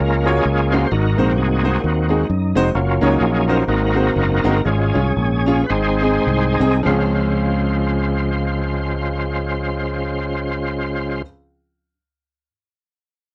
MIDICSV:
0, 0, Header, 1, 4, 480
1, 0, Start_track
1, 0, Key_signature, -5, "major"
1, 0, Tempo, 461184
1, 953, Time_signature, 4, 2, 24, 8
1, 3836, Tempo, 485830
1, 4796, Tempo, 522648
1, 5756, Tempo, 577478
1, 6716, Tempo, 612870
1, 11799, End_track
2, 0, Start_track
2, 0, Title_t, "Grand piano"
2, 0, Program_c, 0, 0
2, 266, Note_on_c, 0, 58, 77
2, 268, Note_on_c, 0, 61, 74
2, 274, Note_on_c, 0, 65, 68
2, 279, Note_on_c, 0, 66, 65
2, 285, Note_on_c, 0, 73, 88
2, 382, Note_off_c, 0, 58, 0
2, 383, Note_off_c, 0, 61, 0
2, 386, Note_off_c, 0, 65, 0
2, 388, Note_off_c, 0, 66, 0
2, 391, Note_off_c, 0, 73, 0
2, 754, Note_on_c, 0, 58, 80
2, 754, Note_on_c, 0, 61, 67
2, 758, Note_on_c, 0, 65, 74
2, 763, Note_on_c, 0, 66, 71
2, 767, Note_on_c, 0, 68, 86
2, 865, Note_off_c, 0, 58, 0
2, 865, Note_off_c, 0, 61, 0
2, 867, Note_off_c, 0, 65, 0
2, 870, Note_off_c, 0, 66, 0
2, 872, Note_off_c, 0, 68, 0
2, 955, Note_on_c, 0, 44, 65
2, 1221, Note_on_c, 0, 56, 75
2, 1223, Note_on_c, 0, 60, 71
2, 1231, Note_on_c, 0, 63, 74
2, 1231, Note_on_c, 0, 66, 71
2, 1235, Note_on_c, 0, 72, 87
2, 1338, Note_off_c, 0, 56, 0
2, 1339, Note_off_c, 0, 60, 0
2, 1343, Note_off_c, 0, 63, 0
2, 1343, Note_off_c, 0, 66, 0
2, 1345, Note_off_c, 0, 72, 0
2, 1669, Note_off_c, 0, 44, 0
2, 1701, Note_on_c, 0, 56, 79
2, 1706, Note_on_c, 0, 60, 64
2, 1708, Note_on_c, 0, 63, 75
2, 1712, Note_on_c, 0, 66, 71
2, 1715, Note_on_c, 0, 72, 83
2, 1817, Note_off_c, 0, 56, 0
2, 1820, Note_off_c, 0, 60, 0
2, 1821, Note_off_c, 0, 63, 0
2, 1823, Note_off_c, 0, 66, 0
2, 1824, Note_off_c, 0, 72, 0
2, 2177, Note_on_c, 0, 56, 76
2, 2179, Note_on_c, 0, 60, 64
2, 2183, Note_on_c, 0, 63, 70
2, 2187, Note_on_c, 0, 66, 67
2, 2190, Note_on_c, 0, 68, 84
2, 2295, Note_off_c, 0, 56, 0
2, 2295, Note_off_c, 0, 60, 0
2, 2298, Note_off_c, 0, 63, 0
2, 2300, Note_off_c, 0, 66, 0
2, 2301, Note_off_c, 0, 68, 0
2, 2657, Note_on_c, 0, 56, 88
2, 2660, Note_on_c, 0, 60, 83
2, 2665, Note_on_c, 0, 63, 87
2, 2668, Note_on_c, 0, 66, 84
2, 2671, Note_on_c, 0, 72, 111
2, 2774, Note_off_c, 0, 56, 0
2, 2776, Note_off_c, 0, 60, 0
2, 2778, Note_off_c, 0, 63, 0
2, 2780, Note_off_c, 0, 66, 0
2, 2781, Note_off_c, 0, 72, 0
2, 3134, Note_on_c, 0, 58, 79
2, 3137, Note_on_c, 0, 61, 75
2, 3140, Note_on_c, 0, 63, 73
2, 3145, Note_on_c, 0, 66, 69
2, 3149, Note_on_c, 0, 73, 89
2, 3253, Note_off_c, 0, 58, 0
2, 3255, Note_off_c, 0, 61, 0
2, 3256, Note_off_c, 0, 63, 0
2, 3259, Note_off_c, 0, 66, 0
2, 3260, Note_off_c, 0, 73, 0
2, 3622, Note_on_c, 0, 58, 76
2, 3624, Note_on_c, 0, 61, 70
2, 3630, Note_on_c, 0, 63, 74
2, 3634, Note_on_c, 0, 66, 66
2, 3637, Note_on_c, 0, 72, 88
2, 3741, Note_off_c, 0, 58, 0
2, 3742, Note_off_c, 0, 61, 0
2, 3745, Note_off_c, 0, 63, 0
2, 3747, Note_off_c, 0, 66, 0
2, 3749, Note_off_c, 0, 72, 0
2, 3837, Note_on_c, 0, 44, 62
2, 4096, Note_on_c, 0, 56, 80
2, 4099, Note_on_c, 0, 60, 67
2, 4100, Note_on_c, 0, 63, 72
2, 4106, Note_on_c, 0, 66, 68
2, 4112, Note_on_c, 0, 72, 80
2, 4214, Note_off_c, 0, 56, 0
2, 4216, Note_off_c, 0, 60, 0
2, 4216, Note_off_c, 0, 63, 0
2, 4219, Note_off_c, 0, 66, 0
2, 4222, Note_off_c, 0, 72, 0
2, 4551, Note_off_c, 0, 44, 0
2, 4578, Note_on_c, 0, 56, 93
2, 4581, Note_on_c, 0, 60, 83
2, 4585, Note_on_c, 0, 63, 88
2, 4588, Note_on_c, 0, 66, 81
2, 4593, Note_on_c, 0, 70, 103
2, 4699, Note_off_c, 0, 56, 0
2, 4701, Note_off_c, 0, 60, 0
2, 4702, Note_off_c, 0, 63, 0
2, 4704, Note_off_c, 0, 66, 0
2, 4707, Note_off_c, 0, 70, 0
2, 4789, Note_on_c, 0, 44, 62
2, 5054, Note_on_c, 0, 61, 83
2, 5063, Note_on_c, 0, 65, 73
2, 5069, Note_on_c, 0, 68, 84
2, 5171, Note_off_c, 0, 61, 0
2, 5175, Note_off_c, 0, 65, 0
2, 5179, Note_off_c, 0, 68, 0
2, 5507, Note_off_c, 0, 44, 0
2, 5535, Note_on_c, 0, 61, 90
2, 5546, Note_on_c, 0, 65, 85
2, 5550, Note_on_c, 0, 68, 93
2, 5657, Note_off_c, 0, 61, 0
2, 5663, Note_off_c, 0, 65, 0
2, 5665, Note_off_c, 0, 68, 0
2, 5755, Note_on_c, 0, 44, 66
2, 6018, Note_on_c, 0, 60, 77
2, 6023, Note_on_c, 0, 63, 69
2, 6029, Note_on_c, 0, 68, 83
2, 6131, Note_off_c, 0, 60, 0
2, 6134, Note_off_c, 0, 63, 0
2, 6137, Note_off_c, 0, 68, 0
2, 6471, Note_off_c, 0, 44, 0
2, 6498, Note_on_c, 0, 60, 86
2, 6506, Note_on_c, 0, 63, 83
2, 6511, Note_on_c, 0, 68, 105
2, 6618, Note_off_c, 0, 60, 0
2, 6623, Note_off_c, 0, 63, 0
2, 6625, Note_off_c, 0, 68, 0
2, 6692, Note_on_c, 0, 53, 86
2, 6711, Note_on_c, 0, 60, 74
2, 6719, Note_on_c, 0, 37, 75
2, 6726, Note_on_c, 0, 61, 77
2, 6744, Note_on_c, 0, 68, 89
2, 10111, Note_off_c, 0, 53, 0
2, 10129, Note_off_c, 0, 60, 0
2, 10137, Note_off_c, 0, 37, 0
2, 10144, Note_off_c, 0, 61, 0
2, 10162, Note_off_c, 0, 68, 0
2, 11799, End_track
3, 0, Start_track
3, 0, Title_t, "Tonewheel organ"
3, 0, Program_c, 1, 16
3, 0, Note_on_c, 1, 56, 63
3, 0, Note_on_c, 1, 58, 57
3, 0, Note_on_c, 1, 61, 69
3, 0, Note_on_c, 1, 65, 71
3, 0, Note_on_c, 1, 70, 91
3, 258, Note_off_c, 1, 65, 0
3, 260, Note_off_c, 1, 61, 0
3, 266, Note_on_c, 1, 68, 109
3, 270, Note_on_c, 1, 65, 66
3, 273, Note_on_c, 1, 61, 68
3, 276, Note_off_c, 1, 70, 0
3, 751, Note_on_c, 1, 72, 100
3, 763, Note_off_c, 1, 68, 0
3, 903, Note_off_c, 1, 56, 0
3, 904, Note_off_c, 1, 58, 0
3, 910, Note_off_c, 1, 65, 0
3, 911, Note_off_c, 1, 61, 0
3, 950, Note_on_c, 1, 70, 102
3, 953, Note_on_c, 1, 66, 78
3, 954, Note_on_c, 1, 63, 77
3, 959, Note_off_c, 1, 72, 0
3, 1213, Note_on_c, 1, 58, 60
3, 1215, Note_off_c, 1, 66, 0
3, 1220, Note_on_c, 1, 60, 54
3, 1228, Note_on_c, 1, 66, 71
3, 1367, Note_on_c, 1, 67, 74
3, 1382, Note_off_c, 1, 70, 0
3, 1421, Note_off_c, 1, 63, 0
3, 1422, Note_off_c, 1, 60, 0
3, 1430, Note_off_c, 1, 67, 0
3, 1434, Note_on_c, 1, 63, 64
3, 1435, Note_on_c, 1, 60, 60
3, 1435, Note_on_c, 1, 68, 88
3, 1893, Note_off_c, 1, 60, 0
3, 1895, Note_off_c, 1, 63, 0
3, 1896, Note_off_c, 1, 66, 0
3, 1906, Note_on_c, 1, 60, 60
3, 1907, Note_on_c, 1, 63, 58
3, 1909, Note_on_c, 1, 66, 81
3, 1927, Note_off_c, 1, 68, 0
3, 2164, Note_off_c, 1, 58, 0
3, 2168, Note_off_c, 1, 60, 0
3, 2175, Note_off_c, 1, 66, 0
3, 2176, Note_on_c, 1, 58, 53
3, 2180, Note_on_c, 1, 60, 46
3, 2188, Note_on_c, 1, 66, 57
3, 2363, Note_off_c, 1, 58, 0
3, 2365, Note_off_c, 1, 60, 0
3, 2369, Note_off_c, 1, 66, 0
3, 2825, Note_off_c, 1, 63, 0
3, 2859, Note_on_c, 1, 54, 58
3, 2864, Note_on_c, 1, 61, 66
3, 2865, Note_on_c, 1, 58, 60
3, 2866, Note_on_c, 1, 65, 92
3, 3129, Note_off_c, 1, 61, 0
3, 3141, Note_on_c, 1, 68, 99
3, 3142, Note_on_c, 1, 61, 73
3, 3143, Note_on_c, 1, 63, 72
3, 3594, Note_off_c, 1, 68, 0
3, 3627, Note_on_c, 1, 70, 96
3, 3720, Note_off_c, 1, 70, 0
3, 3790, Note_off_c, 1, 54, 0
3, 3793, Note_off_c, 1, 61, 0
3, 3793, Note_off_c, 1, 63, 0
3, 3794, Note_off_c, 1, 58, 0
3, 3795, Note_off_c, 1, 65, 0
3, 3823, Note_on_c, 1, 58, 52
3, 3833, Note_on_c, 1, 60, 54
3, 3836, Note_on_c, 1, 66, 68
3, 3836, Note_on_c, 1, 70, 100
3, 3839, Note_on_c, 1, 63, 65
3, 4751, Note_off_c, 1, 58, 0
3, 4756, Note_off_c, 1, 60, 0
3, 4758, Note_off_c, 1, 66, 0
3, 4759, Note_off_c, 1, 63, 0
3, 4786, Note_on_c, 1, 56, 62
3, 4793, Note_on_c, 1, 61, 72
3, 4797, Note_on_c, 1, 68, 99
3, 4801, Note_on_c, 1, 65, 75
3, 4824, Note_off_c, 1, 70, 0
3, 5123, Note_off_c, 1, 56, 0
3, 5132, Note_off_c, 1, 65, 0
3, 5694, Note_on_c, 1, 71, 75
3, 5720, Note_off_c, 1, 61, 0
3, 5720, Note_off_c, 1, 68, 0
3, 5746, Note_on_c, 1, 56, 57
3, 5751, Note_on_c, 1, 60, 54
3, 5752, Note_on_c, 1, 72, 105
3, 5756, Note_on_c, 1, 63, 72
3, 5757, Note_off_c, 1, 71, 0
3, 5758, Note_on_c, 1, 68, 70
3, 6470, Note_off_c, 1, 72, 0
3, 6679, Note_off_c, 1, 56, 0
3, 6681, Note_off_c, 1, 60, 0
3, 6684, Note_off_c, 1, 68, 0
3, 6685, Note_off_c, 1, 63, 0
3, 6716, Note_on_c, 1, 56, 91
3, 6717, Note_on_c, 1, 49, 73
3, 6717, Note_on_c, 1, 65, 74
3, 6718, Note_on_c, 1, 72, 100
3, 10134, Note_off_c, 1, 49, 0
3, 10134, Note_off_c, 1, 56, 0
3, 10135, Note_off_c, 1, 65, 0
3, 10136, Note_off_c, 1, 72, 0
3, 11799, End_track
4, 0, Start_track
4, 0, Title_t, "Fingered electric bass"
4, 0, Program_c, 2, 33
4, 1, Note_on_c, 2, 37, 94
4, 406, Note_off_c, 2, 37, 0
4, 471, Note_on_c, 2, 37, 96
4, 879, Note_off_c, 2, 37, 0
4, 953, Note_on_c, 2, 32, 107
4, 1189, Note_off_c, 2, 32, 0
4, 1232, Note_on_c, 2, 34, 93
4, 1433, Note_off_c, 2, 34, 0
4, 1433, Note_on_c, 2, 36, 109
4, 1840, Note_off_c, 2, 36, 0
4, 1913, Note_on_c, 2, 39, 97
4, 2319, Note_off_c, 2, 39, 0
4, 2389, Note_on_c, 2, 42, 104
4, 2625, Note_off_c, 2, 42, 0
4, 2663, Note_on_c, 2, 29, 100
4, 2836, Note_off_c, 2, 29, 0
4, 2861, Note_on_c, 2, 30, 105
4, 3101, Note_off_c, 2, 30, 0
4, 3143, Note_on_c, 2, 37, 91
4, 3317, Note_off_c, 2, 37, 0
4, 3340, Note_on_c, 2, 34, 108
4, 3758, Note_off_c, 2, 34, 0
4, 3826, Note_on_c, 2, 32, 94
4, 4233, Note_off_c, 2, 32, 0
4, 4306, Note_on_c, 2, 30, 103
4, 4546, Note_off_c, 2, 30, 0
4, 4587, Note_on_c, 2, 31, 93
4, 4764, Note_off_c, 2, 31, 0
4, 4794, Note_on_c, 2, 32, 104
4, 5024, Note_off_c, 2, 32, 0
4, 5068, Note_on_c, 2, 36, 97
4, 5237, Note_off_c, 2, 36, 0
4, 5264, Note_on_c, 2, 34, 103
4, 5682, Note_off_c, 2, 34, 0
4, 5755, Note_on_c, 2, 32, 94
4, 6152, Note_off_c, 2, 32, 0
4, 6225, Note_on_c, 2, 36, 89
4, 6464, Note_off_c, 2, 36, 0
4, 6505, Note_on_c, 2, 36, 94
4, 6685, Note_off_c, 2, 36, 0
4, 6717, Note_on_c, 2, 37, 102
4, 10135, Note_off_c, 2, 37, 0
4, 11799, End_track
0, 0, End_of_file